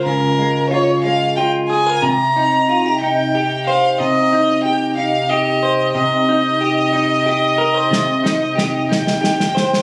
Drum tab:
SD |------------|------------|------------|------------|

SD |o-o-o-oooooo|